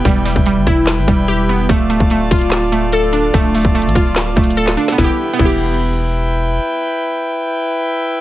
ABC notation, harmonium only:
X:1
M:4/4
L:1/8
Q:1/4=146
K:Ephr
V:1 name="Harmonium"
[EBg]8 | [da]8- | [da]8 | [EBg]8- |
[EBg]8 |]